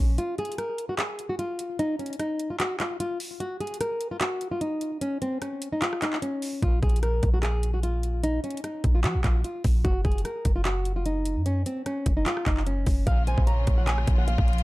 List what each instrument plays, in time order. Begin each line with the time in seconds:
Already playing: nylon-string guitar C#4
0.00 808-style bass A#1
0.18 nylon-string guitar F4, closed hi-hat
0.38 nylon-string guitar G#4, closed hi-hat
0.45 closed hi-hat
0.52 closed hi-hat
0.58 nylon-string guitar A#4, cross-stick, closed hi-hat
0.78 closed hi-hat
0.89 nylon-string guitar F#4
0.98 nylon-string guitar G#4, clap, closed hi-hat
1.19 closed hi-hat
1.29 nylon-string guitar F#4
1.39 nylon-string guitar F4, closed hi-hat
1.59 closed hi-hat
1.79 nylon-string guitar D#4, closed hi-hat
1.99 nylon-string guitar C#4, closed hi-hat
2.06 closed hi-hat
2.13 closed hi-hat
2.19 nylon-string guitar D#4, cross-stick, closed hi-hat
2.40 closed hi-hat
2.50 nylon-string guitar F4
2.60 nylon-string guitar F#4, clap, closed hi-hat
2.80 nylon-string guitar F4, clap, closed hi-hat
3.00 nylon-string guitar F4, closed hi-hat
3.20 open hi-hat
3.40 nylon-string guitar F#4, closed hi-hat
3.60 nylon-string guitar G#4, closed hi-hat
3.67 closed hi-hat
3.74 closed hi-hat
3.81 nylon-string guitar A#4, cross-stick, closed hi-hat
4.01 closed hi-hat
4.11 nylon-string guitar F4
4.21 nylon-string guitar F#4, clap, closed hi-hat
4.41 closed hi-hat
4.51 nylon-string guitar F4
4.61 nylon-string guitar D#4, closed hi-hat
4.81 closed hi-hat
5.01 nylon-string guitar C#4, closed hi-hat
5.22 nylon-string guitar C4, closed hi-hat
5.42 nylon-string guitar C#4, cross-stick, closed hi-hat
5.62 closed hi-hat
5.72 nylon-string guitar D#4
5.82 nylon-string guitar F4, clap, closed hi-hat
5.93 cross-stick
6.02 nylon-string guitar D#4, clap, closed hi-hat
6.13 clap
6.22 nylon-string guitar C#4, closed hi-hat
6.42 open hi-hat
6.62 808-style bass A#1, nylon-string guitar F4, kick, closed hi-hat
6.83 808-style bass A#1, nylon-string guitar G#4, kick, closed hi-hat
6.89 closed hi-hat
6.96 closed hi-hat
7.03 nylon-string guitar A#4, cross-stick, closed hi-hat
7.23 808-style bass A#1, kick, closed hi-hat
7.34 nylon-string guitar F#4
7.43 nylon-string guitar G#4, clap, closed hi-hat
7.63 closed hi-hat
7.74 nylon-string guitar F#4
7.83 nylon-string guitar F4, closed hi-hat
8.03 closed hi-hat
8.24 nylon-string guitar D#4, closed hi-hat
8.44 nylon-string guitar C#4, closed hi-hat
8.51 closed hi-hat
8.57 closed hi-hat
8.64 nylon-string guitar D#4, cross-stick, closed hi-hat
8.84 808-style bass A#1, kick, closed hi-hat
8.95 nylon-string guitar F4
9.04 808-style bass F3, nylon-string guitar F#4, clap, closed hi-hat
9.15 808-style bass A#1
9.24 808-style bass A#1, nylon-string guitar F4, kick, clap, closed hi-hat
9.44 nylon-string guitar F4, closed hi-hat
9.64 808-style bass A#1, kick, open hi-hat
9.85 808-style bass F#1, nylon-string guitar F#4, kick, closed hi-hat
10.05 808-style bass F#1, nylon-string guitar G#4, kick, closed hi-hat
10.12 closed hi-hat
10.18 closed hi-hat
10.25 nylon-string guitar A#4, cross-stick, closed hi-hat
10.45 808-style bass F#1, kick, closed hi-hat
10.56 nylon-string guitar F4
10.65 nylon-string guitar F#4, clap, closed hi-hat
10.85 closed hi-hat
10.96 nylon-string guitar F4
11.06 nylon-string guitar D#4, closed hi-hat
11.26 closed hi-hat
11.36 808-style bass F#2
11.46 nylon-string guitar C#4, closed hi-hat
11.66 nylon-string guitar C4, closed hi-hat
11.86 nylon-string guitar C#4, cross-stick, closed hi-hat
12.06 808-style bass F#1, kick, closed hi-hat
12.17 nylon-string guitar D#4
12.26 nylon-string guitar F4, clap, closed hi-hat
12.37 cross-stick
12.46 808-style bass F#1, nylon-string guitar D#4, kick, clap, closed hi-hat
12.57 clap
12.67 nylon-string guitar C#4, closed hi-hat
12.86 808-style bass F#1, kick, open hi-hat
13.07 808-style bass A#1, string section C#3 F3 A#3 F4, nylon-string guitar F5, kick, closed hi-hat
13.27 soft synth lead C5, nylon-string guitar G#5, closed hi-hat
13.38 808-style bass A#1, kick
13.47 soft synth lead C#5, nylon-string guitar A#5, closed hi-hat
13.67 808-style bass A#1, kick, closed hi-hat
13.78 nylon-string guitar F#5
13.87 nylon-string guitar G#5, clap, closed hi-hat
13.98 cross-stick
14.07 808-style bass A#1, kick, closed hi-hat
14.18 nylon-string guitar F#5
14.28 nylon-string guitar F5, closed hi-hat
14.38 808-style bass A#1, kick
14.48 closed hi-hat
14.53 closed hi-hat
14.58 closed hi-hat